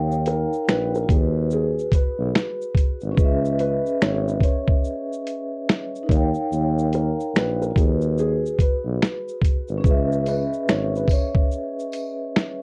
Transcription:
0.00 0.48 D#2 medium
0.00 1.03 D#4 medium
0.00 1.04 A#4 medium
0.00 1.06 C#5 medium
0.00 1.08 F5 medium
0.00 1.09 G5 medium
0.11 shaker medium
0.26 0.64 A#4 medium
0.26 closed hi-hat medium
0.26 shaker soft
0.53 shaker soft
0.67 1.07 A#1 medium
0.67 0.91 B4 medium
0.67 finger snap loud
0.67 snare loud
0.67 shaker medium
0.95 1.09 A#4 medium
0.95 shaker medium
1.03 3.10 F#4 medium
1.09 1.88 D#2 loud
1.09 3.14 G#4 medium
1.09 1.48 G#4 medium
1.09 kick loud
1.09 closed hi-hat medium
1.09 shaker soft
1.16 3.17 B4 medium
1.51 1.90 G#4 medium
1.51 shaker medium
1.79 shaker soft
1.92 3.15 B4 medium
1.92 kick medium
1.92 closed hi-hat medium
1.92 shaker soft
2.19 2.34 B1 loud
2.36 finger snap medium
2.36 snare loud
2.36 shaker medium
2.62 shaker soft
2.75 kick medium
2.75 closed hi-hat medium
2.75 shaker soft
3.01 3.17 G#1 medium
3.01 shaker soft
3.12 6.02 C#4 medium
3.12 6.04 G#4 medium
3.18 3.81 C#2 medium
3.18 6.05 B4 medium
3.18 6.07 D#5 medium
3.18 kick loud
3.18 shaker medium
3.25 6.09 E5 medium
3.45 shaker medium
3.59 4.01 B4 medium
3.59 closed hi-hat soft
3.59 shaker soft
3.86 shaker soft
4.01 4.40 G#1 loud
4.01 4.25 C#5 medium
4.01 finger snap loud
4.01 snare loud
4.01 shaker medium
4.28 4.43 B4 medium
4.28 shaker soft
4.41 6.47 C#5 medium
4.41 kick medium
4.41 closed hi-hat medium
4.41 shaker soft
4.68 kick medium
4.84 shaker medium
5.13 shaker medium
5.27 closed hi-hat medium
5.27 shaker soft
5.69 finger snap medium
5.69 snare loud
5.69 shaker medium
5.95 shaker soft
6.03 7.69 D#4 medium
6.03 7.71 A#4 medium
6.09 6.33 D#2 loud
6.09 7.73 C#5 medium
6.09 kick loud
6.09 closed hi-hat medium
6.09 shaker soft
6.13 7.74 F5 medium
6.13 7.76 G5 medium
6.34 shaker soft
6.51 7.15 D#2 loud
6.51 shaker medium
6.78 shaker medium
6.93 7.35 A#4 medium
6.93 closed hi-hat soft
6.93 shaker soft
7.20 shaker soft
7.34 7.73 A#1 medium
7.34 7.61 B4 medium
7.34 finger snap loud
7.34 snare loud
7.34 shaker medium
7.62 7.75 A#4 medium
7.62 shaker soft
7.71 9.78 F#4 medium
7.76 8.55 D#2 loud
7.76 8.14 G#4 medium
7.76 9.80 G#4 medium
7.76 kick medium
7.76 closed hi-hat medium
7.76 shaker soft
7.84 9.83 B4 medium
8.01 shaker soft
8.18 8.56 G#4 medium
8.18 shaker medium
8.46 shaker soft
8.59 9.81 B4 medium
8.59 kick medium
8.59 closed hi-hat medium
8.59 shaker soft
8.85 9.00 B1 loud
9.02 finger snap medium
9.02 snare loud
9.02 shaker medium
9.28 shaker soft
9.42 kick medium
9.42 closed hi-hat medium
9.42 shaker soft
9.68 9.83 G#1 medium
9.68 shaker soft
9.78 12.62 C#4 medium
9.78 12.62 G#4 medium
9.84 10.48 C#2 medium
9.84 12.62 B4 medium
9.84 12.62 D#5 medium
9.84 kick loud
9.84 shaker medium
9.91 12.62 E5 medium
10.12 shaker soft
10.26 10.69 B4 medium
10.26 closed hi-hat soft
10.26 tambourine soft
10.26 shaker soft
10.53 shaker soft
10.68 11.07 G#1 medium
10.68 10.92 C#5 medium
10.68 finger snap medium
10.68 snare loud
10.68 shaker medium
10.95 11.11 B4 medium
10.95 shaker soft
11.08 kick medium
11.08 closed hi-hat medium
11.08 tambourine medium
11.08 shaker soft
11.12 12.62 C#5 medium
11.35 kick medium
11.51 shaker medium
11.79 shaker medium
11.92 closed hi-hat medium
11.92 tambourine soft
11.92 shaker soft
12.36 finger snap medium
12.36 snare loud
12.36 shaker soft

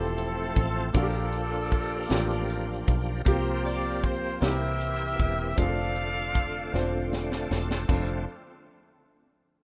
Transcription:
0.00 0.52 E1 medium
0.00 0.67 F3 medium
0.00 0.90 F3 medium
0.00 0.94 A3 medium
0.00 0.90 C4 medium
0.00 0.91 C4 medium
0.00 0.96 C4 medium
0.00 0.91 E4 medium
0.00 0.96 E4 medium
0.00 0.96 F4 medium
0.00 0.68 G4 medium
0.00 0.90 A4 medium
0.00 0.95 A4 medium
0.00 0.96 A4 medium
0.18 closed hi-hat soft
0.56 0.92 A1 medium
0.56 kick medium
0.56 closed hi-hat medium
0.93 2.06 A#1 medium
0.93 2.06 A#2 medium
0.93 3.22 F3 medium
0.93 1.82 A#3 medium
0.93 3.22 A#3 medium
0.93 3.22 D4 medium
0.93 1.82 D4 medium
0.93 2.85 D4 medium
0.93 1.83 F4 medium
0.93 2.84 F4 medium
0.93 1.02 F#4 medium
0.93 3.22 G4 medium
0.93 2.84 A4 medium
0.93 kick medium
0.93 closed hi-hat medium
1.03 1.86 G4 medium
1.32 closed hi-hat soft
1.72 kick medium
1.72 closed hi-hat medium
2.09 2.84 A1 medium
2.09 2.97 A#3 medium
2.09 2.98 D4 medium
2.09 2.98 F4 medium
2.09 2.99 G4 medium
2.09 snare medium
2.09 closed hi-hat medium
2.50 closed hi-hat soft
2.88 3.23 B1 medium
2.88 kick medium
2.88 closed hi-hat medium
3.25 4.38 C2 medium
3.25 4.38 C3 medium
3.25 4.41 F3 medium
3.25 4.40 A#3 medium
3.25 4.13 A#3 medium
3.25 4.40 C4 medium
3.25 4.14 C4 medium
3.25 4.14 F4 medium
3.25 4.39 G4 medium
3.25 4.15 G4 medium
3.25 kick medium
3.25 closed hi-hat medium
3.64 4.01 D5 medium
3.64 closed hi-hat soft
4.04 4.42 C5 medium
4.04 kick medium
4.04 closed hi-hat medium
4.41 5.15 C2 medium
4.41 5.54 C3 medium
4.41 4.48 D#3 soft
4.41 5.29 A#3 medium
4.41 5.57 A#3 soft
4.41 5.56 C4 medium
4.41 5.29 C4 medium
4.41 4.49 D#4 soft
4.41 5.57 G4 medium
4.41 5.30 G4 medium
4.41 5.55 G4 medium
4.41 5.54 A#4 medium
4.41 5.58 E5 medium
4.41 snare medium
4.41 closed hi-hat medium
4.47 5.60 E3 medium
4.47 5.33 E4 medium
4.81 closed hi-hat soft
5.19 5.55 E1 medium
5.19 kick medium
5.19 closed hi-hat medium
5.56 6.70 F1 medium
5.56 7.85 D3 medium
5.56 5.64 G#3 soft
5.56 6.45 C4 medium
5.56 7.85 C4 soft
5.56 6.45 D4 medium
5.56 7.85 F4 medium
5.56 6.46 F4 medium
5.56 5.65 G#4 medium
5.56 7.12 F5 loud
5.56 kick medium
5.56 closed hi-hat medium
5.61 7.88 A3 soft
5.61 7.10 A4 medium
5.61 7.09 D5 medium
5.66 6.50 A4 medium
5.96 closed hi-hat soft
6.35 kick medium
6.35 closed hi-hat medium
6.72 7.47 E1 medium
6.72 7.60 C4 medium
6.72 7.61 D4 medium
6.72 7.62 F4 medium
6.72 7.62 C5 medium
6.72 snare soft
7.13 7.48 D5 medium
7.13 snare medium
7.32 snare medium
7.51 7.86 E1 medium
7.51 7.87 A5 medium
7.51 snare medium
7.71 snare medium
7.88 8.25 F1 medium
7.88 8.25 F2 medium
7.88 8.25 D3 medium
7.88 8.25 A3 medium
7.88 8.25 C4 medium
7.88 8.25 D4 medium
7.88 8.25 F4 medium
7.88 8.25 A4 medium
7.88 kick medium
7.88 crash medium

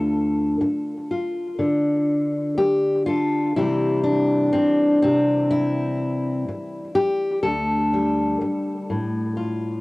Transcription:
0.00 0.60 D2 medium
0.00 1.10 F4 soft
0.00 2.57 A4 medium
0.61 muted steel-string acoustic guitar stroke medium
1.11 3.05 F4 soft
1.59 3.55 D3 medium
2.58 3.06 G4 medium
2.58 muted steel-string acoustic guitar stroke medium
3.06 3.55 F4 medium
3.06 3.50 A4 soft
3.56 4.53 C3 medium
3.56 7.39 E3 soft
3.56 7.45 G3 soft
3.56 4.52 C4 soft
3.56 4.03 E4 medium
4.04 5.50 D4 medium
4.53 5.01 C4 medium
4.53 muted steel-string acoustic guitar stroke medium
5.02 6.47 C3 medium
5.02 6.47 C4 medium
5.51 6.95 E4 medium
6.49 muted steel-string acoustic guitar stroke medium
6.95 7.42 G4 loud
7.43 8.41 D2 medium
7.43 9.35 A4 loud
7.94 9.81 G3 medium
8.41 muted steel-string acoustic guitar stroke medium
8.90 9.81 A2 medium
9.37 9.81 F4 soft

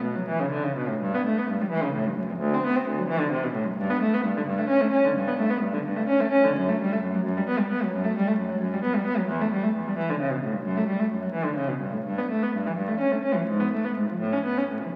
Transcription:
0.04 0.15 B2 medium
0.15 0.28 F#3 medium
0.28 0.40 E3 medium
0.40 0.52 C#3 medium
0.51 0.63 D3 medium
0.64 0.76 C#3 medium
0.77 0.88 B2 medium
0.88 1.00 A2 medium
1.01 1.13 G2 medium
1.15 1.26 B3 medium
1.26 1.37 A3 medium
1.38 1.49 B3 medium
1.50 1.60 G2 medium
1.61 1.72 G3 medium
1.71 1.82 E3 medium
1.83 1.94 C#3 medium
1.94 2.05 A2 medium
2.06 2.17 G2 medium
2.17 2.28 F#2 medium
2.30 2.41 E2 medium
2.39 2.51 D2 medium
2.54 2.64 C4 medium
2.65 2.76 B3 medium
2.76 2.87 C4 medium
2.88 2.98 D2 medium
2.98 3.09 F#3 medium
3.08 3.20 E3 medium
3.20 3.32 D3 medium
3.31 3.43 C3 medium
3.43 3.55 B2 medium
3.53 3.65 A2 medium
3.64 3.77 F#2 medium
3.78 3.89 G2 medium
3.90 4.01 B3 medium
4.02 4.12 A3 medium
4.14 4.24 B3 medium
4.25 4.35 G2 medium
4.37 4.47 D3 medium
4.47 4.58 G2 medium
4.58 4.69 A3 medium
4.69 4.80 C#4 medium
4.80 4.92 A3 medium
4.91 5.03 C#4 medium
5.04 5.15 D3 medium
5.16 5.26 G2 medium
5.27 5.38 B3 medium
5.38 5.49 A3 medium
5.50 5.61 B3 medium
5.61 5.72 G2 medium
5.73 5.84 D3 medium
5.85 5.96 G2 medium
5.96 6.08 A3 medium
6.09 6.20 C#4 medium
6.20 6.32 A3 medium
6.31 6.43 C#4 medium
6.44 6.55 D3 medium
6.56 6.67 F#2 medium
6.69 6.79 A3 medium
6.82 6.91 G3 medium
6.92 7.02 A3 medium
7.03 7.13 F#2 medium
7.15 7.25 F#3 medium
7.25 7.35 F#2 medium
7.37 7.47 G3 medium
7.48 7.58 B3 medium
7.59 7.70 G3 medium
7.71 7.82 B3 medium
7.82 7.93 F#3 medium
7.93 8.04 F#2 medium
8.04 8.15 A3 medium
8.17 8.27 G3 medium
8.27 8.38 A3 medium
8.38 8.49 F#2 medium
8.49 8.60 F#3 medium
8.61 8.72 F#2 medium
8.73 8.84 G3 medium
8.83 8.94 B3 medium
8.95 9.06 G3 medium
9.06 9.17 B3 medium
9.17 9.28 F#3 medium
9.28 9.39 E2 medium
9.41 9.51 A3 medium
9.52 9.63 G3 medium
9.63 9.74 A3 medium
9.76 9.86 E2 medium
9.88 9.98 G3 medium
9.98 10.08 E3 medium
10.10 10.20 D3 medium
10.20 10.31 C#3 medium
10.31 10.42 B2 medium
10.43 10.53 A2 medium
10.53 10.64 G2 medium
10.64 10.75 F#2 medium
10.77 10.88 A3 medium
10.88 10.99 G3 medium
10.99 11.10 A3 medium
11.11 11.22 F#2 medium
11.22 11.33 F#3 medium
11.33 11.45 E3 medium
11.44 11.56 D3 medium
11.55 11.68 C#3 medium
11.68 11.81 B2 medium
11.80 11.93 G2 medium
11.92 12.05 A2 medium
12.05 12.18 G2 medium
12.18 12.30 B3 medium
12.30 12.42 A3 medium
12.43 12.54 B3 medium
12.55 12.65 G2 medium
12.66 12.77 E3 medium
12.77 12.88 G2 medium
12.88 12.99 A3 medium
13.00 13.11 C#4 medium
13.12 13.23 A3 medium
13.24 13.35 C#4 medium
13.35 13.47 E3 medium
13.48 13.59 G#2 medium
13.60 13.71 B3 medium
13.73 13.83 A3 medium
13.84 13.95 B3 medium
13.97 14.07 G#2 soft
14.09 14.19 F3 soft
14.19 14.31 A2 medium
14.32 14.43 C#4 medium
14.45 14.56 B3 medium
14.57 14.69 C#4 medium
14.70 14.81 A2 soft
14.83 14.94 E3 soft

